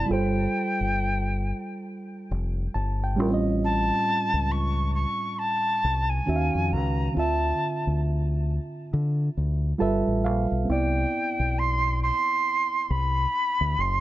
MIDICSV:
0, 0, Header, 1, 4, 480
1, 0, Start_track
1, 0, Key_signature, 0, "major"
1, 0, Tempo, 882353
1, 50, Time_signature, 4, 2, 24, 8
1, 7618, End_track
2, 0, Start_track
2, 0, Title_t, "Flute"
2, 0, Program_c, 0, 73
2, 0, Note_on_c, 0, 81, 82
2, 63, Note_on_c, 0, 79, 84
2, 71, Note_off_c, 0, 81, 0
2, 1016, Note_off_c, 0, 79, 0
2, 1982, Note_on_c, 0, 81, 100
2, 2456, Note_on_c, 0, 85, 97
2, 2464, Note_off_c, 0, 81, 0
2, 2688, Note_off_c, 0, 85, 0
2, 2691, Note_on_c, 0, 85, 86
2, 2930, Note_on_c, 0, 81, 88
2, 2938, Note_off_c, 0, 85, 0
2, 3314, Note_on_c, 0, 80, 81
2, 3322, Note_off_c, 0, 81, 0
2, 3659, Note_on_c, 0, 82, 79
2, 3667, Note_off_c, 0, 80, 0
2, 3894, Note_off_c, 0, 82, 0
2, 3902, Note_on_c, 0, 81, 83
2, 4354, Note_off_c, 0, 81, 0
2, 5818, Note_on_c, 0, 79, 86
2, 6303, Note_on_c, 0, 84, 90
2, 6311, Note_off_c, 0, 79, 0
2, 6536, Note_off_c, 0, 84, 0
2, 6543, Note_on_c, 0, 84, 96
2, 7022, Note_on_c, 0, 83, 93
2, 7030, Note_off_c, 0, 84, 0
2, 7508, Note_on_c, 0, 84, 83
2, 7516, Note_off_c, 0, 83, 0
2, 7618, Note_off_c, 0, 84, 0
2, 7618, End_track
3, 0, Start_track
3, 0, Title_t, "Reed electric piano"
3, 0, Program_c, 1, 4
3, 0, Control_c, 1, 64, 127
3, 0, Note_on_c, 1, 48, 44
3, 0, Note_on_c, 1, 59, 41
3, 0, Note_on_c, 1, 74, 49
3, 33, Note_on_c, 1, 55, 57
3, 46, Note_on_c, 1, 65, 52
3, 56, Note_off_c, 1, 74, 0
3, 56, Control_c, 1, 64, 0
3, 57, Note_off_c, 1, 48, 0
3, 58, Note_on_c, 1, 69, 48
3, 60, Note_off_c, 1, 59, 0
3, 72, Note_on_c, 1, 72, 64
3, 158, Control_c, 1, 64, 127
3, 1493, Note_on_c, 1, 81, 63
3, 1640, Note_off_c, 1, 81, 0
3, 1652, Note_on_c, 1, 79, 62
3, 1699, Note_off_c, 1, 55, 0
3, 1706, Note_off_c, 1, 65, 0
3, 1712, Note_off_c, 1, 69, 0
3, 1713, Note_on_c, 1, 45, 65
3, 1719, Note_off_c, 1, 72, 0
3, 1721, Note_on_c, 1, 55, 65
3, 1730, Note_on_c, 1, 61, 66
3, 1736, Control_c, 1, 64, 0
3, 1740, Note_on_c, 1, 65, 65
3, 1752, Note_on_c, 1, 70, 66
3, 1782, Note_off_c, 1, 70, 0
3, 1788, Note_on_c, 1, 60, 73
3, 1800, Note_off_c, 1, 79, 0
3, 1816, Note_on_c, 1, 75, 66
3, 1846, Control_c, 1, 64, 127
3, 1962, Note_off_c, 1, 75, 0
3, 3379, Note_off_c, 1, 45, 0
3, 3383, Note_off_c, 1, 55, 0
3, 3388, Note_off_c, 1, 61, 0
3, 3393, Note_off_c, 1, 65, 0
3, 3405, Note_on_c, 1, 51, 58
3, 3411, Note_on_c, 1, 61, 55
3, 3417, Note_off_c, 1, 60, 0
3, 3417, Control_c, 1, 64, 0
3, 3418, Note_on_c, 1, 66, 55
3, 3424, Note_on_c, 1, 76, 52
3, 3459, Note_off_c, 1, 76, 0
3, 3459, Note_on_c, 1, 77, 60
3, 3525, Control_c, 1, 64, 127
3, 3874, Note_on_c, 1, 50, 55
3, 3887, Note_off_c, 1, 51, 0
3, 3887, Note_on_c, 1, 60, 50
3, 3890, Note_off_c, 1, 61, 0
3, 3894, Note_off_c, 1, 66, 0
3, 3896, Control_c, 1, 64, 0
3, 3901, Note_on_c, 1, 65, 54
3, 3914, Note_off_c, 1, 77, 0
3, 3914, Note_on_c, 1, 76, 58
3, 3990, Control_c, 1, 64, 127
3, 5300, Note_off_c, 1, 50, 0
3, 5307, Note_off_c, 1, 60, 0
3, 5313, Note_off_c, 1, 65, 0
3, 5320, Note_off_c, 1, 76, 0
3, 5322, Note_on_c, 1, 55, 66
3, 5326, Note_on_c, 1, 65, 59
3, 5331, Note_on_c, 1, 69, 59
3, 5332, Note_on_c, 1, 81, 65
3, 5336, Control_c, 1, 64, 0
3, 5337, Note_on_c, 1, 71, 64
3, 5341, Note_on_c, 1, 76, 70
3, 5439, Control_c, 1, 64, 127
3, 5554, Note_off_c, 1, 81, 0
3, 5573, Note_on_c, 1, 77, 65
3, 5793, Note_on_c, 1, 60, 52
3, 5795, Note_off_c, 1, 77, 0
3, 5806, Note_off_c, 1, 55, 0
3, 5807, Note_on_c, 1, 59, 51
3, 5808, Note_off_c, 1, 65, 0
3, 5810, Note_off_c, 1, 69, 0
3, 5813, Note_off_c, 1, 71, 0
3, 5815, Note_off_c, 1, 76, 0
3, 5815, Control_c, 1, 64, 0
3, 5819, Note_on_c, 1, 64, 48
3, 5833, Note_on_c, 1, 74, 61
3, 5898, Control_c, 1, 64, 127
3, 7618, Note_off_c, 1, 59, 0
3, 7618, Note_off_c, 1, 60, 0
3, 7618, Note_off_c, 1, 64, 0
3, 7618, Note_off_c, 1, 74, 0
3, 7618, End_track
4, 0, Start_track
4, 0, Title_t, "Fingered electric bass"
4, 0, Program_c, 2, 33
4, 58, Note_on_c, 2, 31, 93
4, 248, Note_off_c, 2, 31, 0
4, 439, Note_on_c, 2, 31, 67
4, 824, Note_off_c, 2, 31, 0
4, 1258, Note_on_c, 2, 29, 83
4, 1449, Note_off_c, 2, 29, 0
4, 1497, Note_on_c, 2, 31, 79
4, 1738, Note_off_c, 2, 31, 0
4, 1738, Note_on_c, 2, 33, 85
4, 2123, Note_off_c, 2, 33, 0
4, 2360, Note_on_c, 2, 37, 81
4, 2745, Note_off_c, 2, 37, 0
4, 3180, Note_on_c, 2, 36, 81
4, 3369, Note_off_c, 2, 36, 0
4, 3420, Note_on_c, 2, 39, 83
4, 3531, Note_off_c, 2, 39, 0
4, 3563, Note_on_c, 2, 41, 71
4, 3658, Note_on_c, 2, 37, 81
4, 3667, Note_off_c, 2, 41, 0
4, 3849, Note_off_c, 2, 37, 0
4, 3898, Note_on_c, 2, 38, 91
4, 4089, Note_off_c, 2, 38, 0
4, 4282, Note_on_c, 2, 38, 69
4, 4666, Note_off_c, 2, 38, 0
4, 4860, Note_on_c, 2, 50, 95
4, 5050, Note_off_c, 2, 50, 0
4, 5100, Note_on_c, 2, 38, 74
4, 5289, Note_off_c, 2, 38, 0
4, 5338, Note_on_c, 2, 31, 81
4, 5450, Note_off_c, 2, 31, 0
4, 5480, Note_on_c, 2, 33, 71
4, 5580, Note_off_c, 2, 33, 0
4, 5580, Note_on_c, 2, 34, 75
4, 5691, Note_off_c, 2, 34, 0
4, 5722, Note_on_c, 2, 35, 70
4, 5797, Note_off_c, 2, 35, 0
4, 5817, Note_on_c, 2, 36, 83
4, 6008, Note_off_c, 2, 36, 0
4, 6200, Note_on_c, 2, 35, 73
4, 6584, Note_off_c, 2, 35, 0
4, 7020, Note_on_c, 2, 36, 84
4, 7210, Note_off_c, 2, 36, 0
4, 7403, Note_on_c, 2, 38, 80
4, 7477, Note_off_c, 2, 38, 0
4, 7499, Note_on_c, 2, 30, 85
4, 7618, Note_off_c, 2, 30, 0
4, 7618, End_track
0, 0, End_of_file